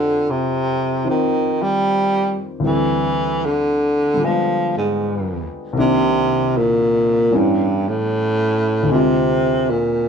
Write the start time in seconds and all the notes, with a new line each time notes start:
Already playing: F2 D3 F3 G4 D#5
0.30 C3
1.04 D#3 C4 F4 C5
1.10 D#3
1.63 G3
2.60 D2 D3 E3 G3 C4
2.64 E3 E4
3.45 D3
4.14 D3 G3
4.20 F3 G#3
4.25 F3 B3
4.77 G#2
5.73 C2 C3 D#3
5.77 C3 A#3 D4
6.57 A#2
7.31 A2 E3 G3 B3 C#4
7.36 G2
7.88 A2
8.83 D2 D3
8.88 C3 G#3 C4
8.94 F4
9.70 A#2